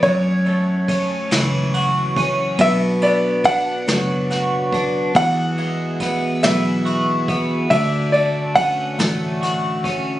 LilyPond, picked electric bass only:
\new Staff \with { instrumentName = "Picked electric bass" } { \clef bass \time 6/8 \key fis \minor \tempo 4. = 47 fis,4. cis,4. | b,,4. fis,,4. | e,4. b,,4. | d,4. a,,4. | }